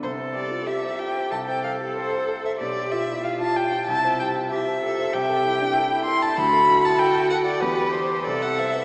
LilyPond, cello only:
\new Staff \with { instrumentName = "Cello" } { \time 2/4 \key c \major \tempo 4 = 94 a'4 g'4 | a'2 | g'4 f'4 | e'4 g'8 a'8 |
\key d \mixolydian g'4 e'4 | fis'2 | g'4 a'4 | }